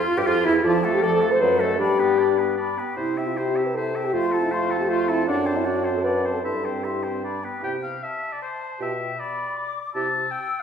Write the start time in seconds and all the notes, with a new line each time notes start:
Already playing: F4
0.17 G2 G4
0.26 F2 F4
0.45 E2 E4
0.63 F2 F3 F4 D5 A5
0.84 A3 A4 F5
0.93 G4
1.02 F3 A4 D5 A5
1.21 A3 A4 F5
1.31 C5
1.40 F#2 F#3 B4 C5 F#5
1.59 A3 A4 D#5
1.79 G2 D4 G4 D5 B5
1.99 B3 B4 G5
2.17 D4 D5 B5
2.38 B3 B4 G5
2.57 D4 D5 B5
2.77 B3 B4 G5
2.97 C3 E4 C5 E5
3.17 C4 E5 G5
3.27 F4
3.35 E4 G4 C5 E5
3.55 C4 E5 G5
3.66 B4
3.74 E4 A4 C5 E5
3.95 C4 E5 G5
4.05 G4
4.13 F2 A3 F4 C5 C6
4.32 C4 A4 A5
4.42 E4
4.51 A3 F4 C5 C6
4.69 C4 A4 A5
4.81 G4
4.89 A3 F4 C5 C6
5.07 C4 E4 A4 A5
5.27 F#2 D4 D5 F#5
5.46 C4 C5 A5
5.56 E4
5.65 D4 F#4 D5 F#5
5.84 C4 C5 A5
5.95 A4
6.03 D4 B4 D5 F#5
6.24 C4 C5 A5
6.34 A4
6.43 G2 E4 A4 E5 C6
6.63 C4 C5 G5
6.84 E4 G4 E5 C6
7.03 C4 C5 G5
7.23 D4 D5 B5
7.43 B3 B4 G5
7.62 C3 E4 G4 G5
7.83 F5
8.03 E5 A5
8.32 D5
8.42 C5
8.80 B2 F4 G4 E5 G5
9.19 D5 B5
9.57 D6
9.94 C3 E4 G4 A5 E6
10.31 G5